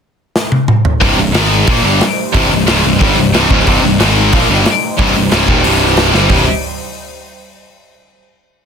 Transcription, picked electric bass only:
1.02 C1
1.17 C1
1.34 G#1
1.67 A#1
1.84 G1
2.34 C1
2.51 C1
2.68 C#1
2.84 C1
3.00 G1
3.17 C1
3.33 C1
3.50 C#1
3.67 C1
3.83 C1
4.00 G#1
4.33 A#1
4.50 G1
4.99 C1
5.16 C1
5.31 C#1
5.48 D#1
5.65 C1
6.13 G1
6.29 C1

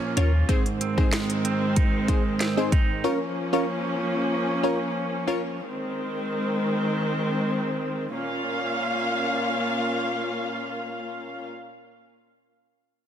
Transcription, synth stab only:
0.17 C#4 F4 A#4 C#5
0.49 C4 D#4 G#4 C5
0.97 C4 D#4 G#4 C5
2.08 C4 D#4 G#4 C5
2.57 C4 D#4 G#4 C5
3.04 C#4 F4 A#4 C#5
3.53 C#4 F4 A#4 C#5
4.63 C#4 F4 A#4 C#5
5.27 C#4 F4 A#4 C#5

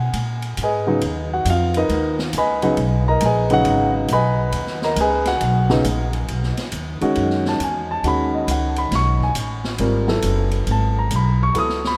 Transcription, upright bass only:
Already playing: B2
0.13 A#2
0.58 G#2
1.02 D#2
1.45 F2
1.89 D#2
2.33 C#2
2.77 B1
3.21 A#1
3.64 G#1
4.08 B1
4.52 D#2
4.96 C#2
5.41 B1
5.84 A#1
6.29 B1
6.58 muted upright bass stroke
6.72 D#2
7.02 muted upright bass stroke
7.17 F#2
7.60 E2
8.03 D#2
8.47 C#2
8.91 B1
9.35 A1
9.79 G#1
10.23 F#1
10.67 G#1
11.11 B1
11.55 C#2

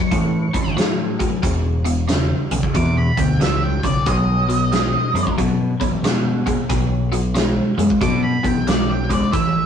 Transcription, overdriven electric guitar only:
0.11 A2 E3
0.54 A2 E3
0.77 A2 F#3
1.20 A2 F#3
1.43 E2 B2
1.85 E2 B2
2.08 E2 C#3
2.52 E2 C#3
2.74 E2 B2
3.17 E2 B2
3.40 E2 C#3
3.84 E2 C#3
4.06 B2 F#3
4.48 B2 F#3
4.72 B2 G#3
5.15 B2 G#3
5.38 B2 F#3
5.80 B2 F#3
6.04 B2 G#3
6.46 B2 G#3
6.69 B2 F#3
7.12 B2 F#3
7.35 B2 G#3
7.78 B2 G#3
8.01 B2 F#3
8.43 B2 F#3
8.67 B2 G#3
9.10 B2 G#3
9.32 A2 E3

